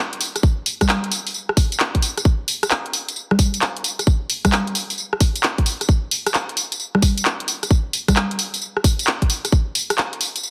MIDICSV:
0, 0, Header, 1, 2, 480
1, 0, Start_track
1, 0, Tempo, 454545
1, 457, Time_signature, 4, 2, 24, 8
1, 11090, End_track
2, 0, Start_track
2, 0, Title_t, "Drums"
2, 136, Note_on_c, 9, 42, 53
2, 218, Note_on_c, 9, 46, 115
2, 218, Note_on_c, 9, 54, 72
2, 242, Note_off_c, 9, 42, 0
2, 323, Note_off_c, 9, 46, 0
2, 323, Note_off_c, 9, 54, 0
2, 376, Note_on_c, 9, 37, 33
2, 376, Note_on_c, 9, 42, 64
2, 376, Note_on_c, 9, 54, 39
2, 457, Note_on_c, 9, 36, 127
2, 458, Note_off_c, 9, 54, 0
2, 458, Note_on_c, 9, 54, 29
2, 482, Note_off_c, 9, 37, 0
2, 482, Note_off_c, 9, 42, 0
2, 563, Note_off_c, 9, 36, 0
2, 564, Note_off_c, 9, 54, 0
2, 698, Note_on_c, 9, 46, 107
2, 698, Note_on_c, 9, 54, 67
2, 803, Note_off_c, 9, 46, 0
2, 803, Note_off_c, 9, 54, 0
2, 856, Note_on_c, 9, 36, 66
2, 856, Note_on_c, 9, 37, 71
2, 856, Note_on_c, 9, 42, 65
2, 856, Note_on_c, 9, 54, 41
2, 856, Note_on_c, 9, 63, 79
2, 938, Note_off_c, 9, 54, 0
2, 938, Note_on_c, 9, 39, 121
2, 938, Note_on_c, 9, 54, 28
2, 961, Note_off_c, 9, 36, 0
2, 962, Note_off_c, 9, 37, 0
2, 962, Note_off_c, 9, 42, 0
2, 962, Note_off_c, 9, 63, 0
2, 1044, Note_off_c, 9, 39, 0
2, 1044, Note_off_c, 9, 54, 0
2, 1097, Note_on_c, 9, 42, 37
2, 1178, Note_on_c, 9, 46, 105
2, 1178, Note_on_c, 9, 54, 66
2, 1202, Note_off_c, 9, 42, 0
2, 1283, Note_off_c, 9, 46, 0
2, 1283, Note_off_c, 9, 54, 0
2, 1337, Note_on_c, 9, 46, 64
2, 1337, Note_on_c, 9, 54, 40
2, 1417, Note_off_c, 9, 54, 0
2, 1417, Note_on_c, 9, 54, 31
2, 1442, Note_off_c, 9, 46, 0
2, 1523, Note_off_c, 9, 54, 0
2, 1576, Note_on_c, 9, 37, 61
2, 1657, Note_on_c, 9, 36, 113
2, 1658, Note_on_c, 9, 46, 106
2, 1658, Note_on_c, 9, 54, 72
2, 1682, Note_off_c, 9, 37, 0
2, 1763, Note_off_c, 9, 36, 0
2, 1764, Note_off_c, 9, 46, 0
2, 1764, Note_off_c, 9, 54, 0
2, 1817, Note_on_c, 9, 42, 64
2, 1817, Note_on_c, 9, 54, 41
2, 1898, Note_off_c, 9, 54, 0
2, 1898, Note_on_c, 9, 39, 123
2, 1898, Note_on_c, 9, 54, 30
2, 1923, Note_off_c, 9, 42, 0
2, 2004, Note_off_c, 9, 39, 0
2, 2004, Note_off_c, 9, 54, 0
2, 2057, Note_on_c, 9, 36, 65
2, 2057, Note_on_c, 9, 42, 50
2, 2138, Note_on_c, 9, 46, 110
2, 2138, Note_on_c, 9, 54, 69
2, 2162, Note_off_c, 9, 36, 0
2, 2163, Note_off_c, 9, 42, 0
2, 2243, Note_off_c, 9, 46, 0
2, 2243, Note_off_c, 9, 54, 0
2, 2297, Note_on_c, 9, 37, 33
2, 2297, Note_on_c, 9, 42, 61
2, 2297, Note_on_c, 9, 54, 41
2, 2378, Note_on_c, 9, 36, 125
2, 2402, Note_off_c, 9, 37, 0
2, 2402, Note_off_c, 9, 42, 0
2, 2402, Note_off_c, 9, 54, 0
2, 2483, Note_off_c, 9, 36, 0
2, 2618, Note_on_c, 9, 46, 105
2, 2618, Note_on_c, 9, 54, 72
2, 2723, Note_off_c, 9, 46, 0
2, 2723, Note_off_c, 9, 54, 0
2, 2777, Note_on_c, 9, 37, 69
2, 2777, Note_on_c, 9, 42, 63
2, 2777, Note_on_c, 9, 54, 43
2, 2858, Note_off_c, 9, 54, 0
2, 2858, Note_on_c, 9, 39, 122
2, 2858, Note_on_c, 9, 54, 31
2, 2883, Note_off_c, 9, 37, 0
2, 2883, Note_off_c, 9, 42, 0
2, 2964, Note_off_c, 9, 39, 0
2, 2964, Note_off_c, 9, 54, 0
2, 3017, Note_on_c, 9, 42, 36
2, 3099, Note_on_c, 9, 46, 102
2, 3099, Note_on_c, 9, 54, 71
2, 3123, Note_off_c, 9, 42, 0
2, 3204, Note_off_c, 9, 46, 0
2, 3204, Note_off_c, 9, 54, 0
2, 3258, Note_on_c, 9, 42, 62
2, 3258, Note_on_c, 9, 54, 41
2, 3338, Note_off_c, 9, 54, 0
2, 3338, Note_on_c, 9, 54, 32
2, 3363, Note_off_c, 9, 42, 0
2, 3444, Note_off_c, 9, 54, 0
2, 3497, Note_on_c, 9, 37, 60
2, 3497, Note_on_c, 9, 63, 64
2, 3578, Note_on_c, 9, 36, 110
2, 3578, Note_on_c, 9, 46, 105
2, 3578, Note_on_c, 9, 54, 73
2, 3603, Note_off_c, 9, 37, 0
2, 3603, Note_off_c, 9, 63, 0
2, 3683, Note_off_c, 9, 46, 0
2, 3683, Note_off_c, 9, 54, 0
2, 3684, Note_off_c, 9, 36, 0
2, 3737, Note_on_c, 9, 42, 64
2, 3737, Note_on_c, 9, 54, 43
2, 3818, Note_off_c, 9, 54, 0
2, 3818, Note_on_c, 9, 39, 124
2, 3818, Note_on_c, 9, 54, 30
2, 3842, Note_off_c, 9, 42, 0
2, 3924, Note_off_c, 9, 39, 0
2, 3924, Note_off_c, 9, 54, 0
2, 3976, Note_on_c, 9, 42, 51
2, 4057, Note_on_c, 9, 46, 106
2, 4057, Note_on_c, 9, 54, 73
2, 4082, Note_off_c, 9, 42, 0
2, 4163, Note_off_c, 9, 46, 0
2, 4163, Note_off_c, 9, 54, 0
2, 4216, Note_on_c, 9, 37, 31
2, 4216, Note_on_c, 9, 42, 59
2, 4216, Note_on_c, 9, 54, 42
2, 4297, Note_off_c, 9, 54, 0
2, 4297, Note_on_c, 9, 54, 31
2, 4298, Note_on_c, 9, 36, 127
2, 4322, Note_off_c, 9, 37, 0
2, 4322, Note_off_c, 9, 42, 0
2, 4403, Note_off_c, 9, 36, 0
2, 4403, Note_off_c, 9, 54, 0
2, 4537, Note_on_c, 9, 46, 101
2, 4537, Note_on_c, 9, 54, 76
2, 4642, Note_off_c, 9, 46, 0
2, 4642, Note_off_c, 9, 54, 0
2, 4696, Note_on_c, 9, 37, 68
2, 4696, Note_on_c, 9, 42, 64
2, 4696, Note_on_c, 9, 54, 43
2, 4696, Note_on_c, 9, 63, 85
2, 4697, Note_on_c, 9, 36, 65
2, 4777, Note_off_c, 9, 54, 0
2, 4777, Note_on_c, 9, 39, 125
2, 4777, Note_on_c, 9, 54, 32
2, 4801, Note_off_c, 9, 37, 0
2, 4801, Note_off_c, 9, 42, 0
2, 4801, Note_off_c, 9, 63, 0
2, 4802, Note_off_c, 9, 36, 0
2, 4882, Note_off_c, 9, 39, 0
2, 4882, Note_off_c, 9, 54, 0
2, 4936, Note_on_c, 9, 42, 36
2, 5017, Note_on_c, 9, 46, 102
2, 5017, Note_on_c, 9, 54, 74
2, 5041, Note_off_c, 9, 42, 0
2, 5122, Note_off_c, 9, 46, 0
2, 5122, Note_off_c, 9, 54, 0
2, 5176, Note_on_c, 9, 46, 59
2, 5176, Note_on_c, 9, 54, 44
2, 5257, Note_off_c, 9, 54, 0
2, 5257, Note_on_c, 9, 54, 33
2, 5281, Note_off_c, 9, 46, 0
2, 5362, Note_off_c, 9, 54, 0
2, 5415, Note_on_c, 9, 37, 57
2, 5496, Note_on_c, 9, 46, 100
2, 5496, Note_on_c, 9, 54, 77
2, 5497, Note_on_c, 9, 36, 108
2, 5521, Note_off_c, 9, 37, 0
2, 5602, Note_off_c, 9, 46, 0
2, 5602, Note_off_c, 9, 54, 0
2, 5603, Note_off_c, 9, 36, 0
2, 5656, Note_on_c, 9, 42, 63
2, 5656, Note_on_c, 9, 54, 44
2, 5736, Note_off_c, 9, 54, 0
2, 5736, Note_on_c, 9, 39, 127
2, 5736, Note_on_c, 9, 54, 34
2, 5761, Note_off_c, 9, 42, 0
2, 5842, Note_off_c, 9, 39, 0
2, 5842, Note_off_c, 9, 54, 0
2, 5896, Note_on_c, 9, 36, 64
2, 5896, Note_on_c, 9, 42, 50
2, 5977, Note_on_c, 9, 46, 103
2, 5977, Note_on_c, 9, 54, 75
2, 6001, Note_off_c, 9, 36, 0
2, 6002, Note_off_c, 9, 42, 0
2, 6083, Note_off_c, 9, 46, 0
2, 6083, Note_off_c, 9, 54, 0
2, 6136, Note_on_c, 9, 37, 29
2, 6136, Note_on_c, 9, 42, 63
2, 6136, Note_on_c, 9, 54, 41
2, 6217, Note_off_c, 9, 54, 0
2, 6217, Note_on_c, 9, 36, 123
2, 6217, Note_on_c, 9, 54, 34
2, 6241, Note_off_c, 9, 37, 0
2, 6241, Note_off_c, 9, 42, 0
2, 6322, Note_off_c, 9, 36, 0
2, 6322, Note_off_c, 9, 54, 0
2, 6456, Note_on_c, 9, 46, 105
2, 6456, Note_on_c, 9, 54, 76
2, 6562, Note_off_c, 9, 46, 0
2, 6562, Note_off_c, 9, 54, 0
2, 6616, Note_on_c, 9, 37, 64
2, 6616, Note_on_c, 9, 42, 67
2, 6616, Note_on_c, 9, 54, 44
2, 6698, Note_off_c, 9, 54, 0
2, 6698, Note_on_c, 9, 39, 116
2, 6698, Note_on_c, 9, 54, 33
2, 6722, Note_off_c, 9, 37, 0
2, 6722, Note_off_c, 9, 42, 0
2, 6803, Note_off_c, 9, 39, 0
2, 6803, Note_off_c, 9, 54, 0
2, 6856, Note_on_c, 9, 42, 38
2, 6937, Note_on_c, 9, 46, 100
2, 6937, Note_on_c, 9, 54, 73
2, 6962, Note_off_c, 9, 42, 0
2, 7042, Note_off_c, 9, 46, 0
2, 7042, Note_off_c, 9, 54, 0
2, 7096, Note_on_c, 9, 42, 66
2, 7096, Note_on_c, 9, 54, 45
2, 7178, Note_off_c, 9, 54, 0
2, 7178, Note_on_c, 9, 54, 33
2, 7202, Note_off_c, 9, 42, 0
2, 7283, Note_off_c, 9, 54, 0
2, 7337, Note_on_c, 9, 37, 55
2, 7337, Note_on_c, 9, 63, 65
2, 7417, Note_on_c, 9, 36, 105
2, 7418, Note_on_c, 9, 46, 102
2, 7418, Note_on_c, 9, 54, 75
2, 7442, Note_off_c, 9, 37, 0
2, 7442, Note_off_c, 9, 63, 0
2, 7523, Note_off_c, 9, 36, 0
2, 7523, Note_off_c, 9, 46, 0
2, 7523, Note_off_c, 9, 54, 0
2, 7577, Note_on_c, 9, 42, 68
2, 7577, Note_on_c, 9, 54, 44
2, 7658, Note_off_c, 9, 54, 0
2, 7658, Note_on_c, 9, 39, 124
2, 7658, Note_on_c, 9, 54, 35
2, 7683, Note_off_c, 9, 42, 0
2, 7764, Note_off_c, 9, 39, 0
2, 7764, Note_off_c, 9, 54, 0
2, 7817, Note_on_c, 9, 42, 56
2, 7898, Note_on_c, 9, 46, 103
2, 7898, Note_on_c, 9, 54, 78
2, 7923, Note_off_c, 9, 42, 0
2, 8003, Note_off_c, 9, 46, 0
2, 8003, Note_off_c, 9, 54, 0
2, 8057, Note_on_c, 9, 37, 30
2, 8057, Note_on_c, 9, 42, 66
2, 8057, Note_on_c, 9, 54, 44
2, 8137, Note_on_c, 9, 36, 119
2, 8138, Note_off_c, 9, 54, 0
2, 8138, Note_on_c, 9, 54, 34
2, 8163, Note_off_c, 9, 37, 0
2, 8163, Note_off_c, 9, 42, 0
2, 8243, Note_off_c, 9, 36, 0
2, 8244, Note_off_c, 9, 54, 0
2, 8378, Note_on_c, 9, 46, 105
2, 8378, Note_on_c, 9, 54, 76
2, 8483, Note_off_c, 9, 46, 0
2, 8483, Note_off_c, 9, 54, 0
2, 8536, Note_on_c, 9, 36, 62
2, 8537, Note_on_c, 9, 37, 63
2, 8537, Note_on_c, 9, 42, 69
2, 8537, Note_on_c, 9, 54, 44
2, 8537, Note_on_c, 9, 63, 80
2, 8617, Note_off_c, 9, 54, 0
2, 8617, Note_on_c, 9, 39, 113
2, 8617, Note_on_c, 9, 54, 32
2, 8642, Note_off_c, 9, 36, 0
2, 8642, Note_off_c, 9, 37, 0
2, 8642, Note_off_c, 9, 42, 0
2, 8642, Note_off_c, 9, 63, 0
2, 8723, Note_off_c, 9, 39, 0
2, 8723, Note_off_c, 9, 54, 0
2, 8777, Note_on_c, 9, 42, 40
2, 8858, Note_on_c, 9, 46, 102
2, 8858, Note_on_c, 9, 54, 75
2, 8883, Note_off_c, 9, 42, 0
2, 8964, Note_off_c, 9, 46, 0
2, 8964, Note_off_c, 9, 54, 0
2, 9016, Note_on_c, 9, 46, 59
2, 9016, Note_on_c, 9, 54, 44
2, 9098, Note_off_c, 9, 54, 0
2, 9098, Note_on_c, 9, 54, 35
2, 9122, Note_off_c, 9, 46, 0
2, 9203, Note_off_c, 9, 54, 0
2, 9257, Note_on_c, 9, 37, 53
2, 9338, Note_on_c, 9, 36, 103
2, 9338, Note_on_c, 9, 46, 102
2, 9338, Note_on_c, 9, 54, 79
2, 9363, Note_off_c, 9, 37, 0
2, 9443, Note_off_c, 9, 36, 0
2, 9444, Note_off_c, 9, 46, 0
2, 9444, Note_off_c, 9, 54, 0
2, 9497, Note_on_c, 9, 42, 71
2, 9497, Note_on_c, 9, 54, 44
2, 9578, Note_off_c, 9, 54, 0
2, 9578, Note_on_c, 9, 39, 119
2, 9578, Note_on_c, 9, 54, 34
2, 9602, Note_off_c, 9, 42, 0
2, 9684, Note_off_c, 9, 39, 0
2, 9684, Note_off_c, 9, 54, 0
2, 9736, Note_on_c, 9, 42, 53
2, 9737, Note_on_c, 9, 36, 60
2, 9817, Note_on_c, 9, 46, 103
2, 9817, Note_on_c, 9, 54, 78
2, 9842, Note_off_c, 9, 36, 0
2, 9842, Note_off_c, 9, 42, 0
2, 9923, Note_off_c, 9, 46, 0
2, 9923, Note_off_c, 9, 54, 0
2, 9976, Note_on_c, 9, 37, 30
2, 9976, Note_on_c, 9, 42, 68
2, 9976, Note_on_c, 9, 54, 43
2, 10058, Note_off_c, 9, 54, 0
2, 10058, Note_on_c, 9, 36, 118
2, 10058, Note_on_c, 9, 54, 32
2, 10082, Note_off_c, 9, 37, 0
2, 10082, Note_off_c, 9, 42, 0
2, 10163, Note_off_c, 9, 36, 0
2, 10163, Note_off_c, 9, 54, 0
2, 10298, Note_on_c, 9, 46, 107
2, 10298, Note_on_c, 9, 54, 77
2, 10403, Note_off_c, 9, 46, 0
2, 10403, Note_off_c, 9, 54, 0
2, 10457, Note_on_c, 9, 37, 67
2, 10457, Note_on_c, 9, 42, 71
2, 10457, Note_on_c, 9, 54, 44
2, 10538, Note_off_c, 9, 54, 0
2, 10538, Note_on_c, 9, 39, 112
2, 10538, Note_on_c, 9, 54, 32
2, 10562, Note_off_c, 9, 37, 0
2, 10562, Note_off_c, 9, 42, 0
2, 10644, Note_off_c, 9, 39, 0
2, 10644, Note_off_c, 9, 54, 0
2, 10697, Note_on_c, 9, 42, 40
2, 10778, Note_on_c, 9, 46, 106
2, 10778, Note_on_c, 9, 54, 73
2, 10802, Note_off_c, 9, 42, 0
2, 10884, Note_off_c, 9, 46, 0
2, 10884, Note_off_c, 9, 54, 0
2, 10937, Note_on_c, 9, 42, 67
2, 10937, Note_on_c, 9, 54, 44
2, 11018, Note_off_c, 9, 54, 0
2, 11018, Note_on_c, 9, 54, 34
2, 11042, Note_off_c, 9, 42, 0
2, 11090, Note_off_c, 9, 54, 0
2, 11090, End_track
0, 0, End_of_file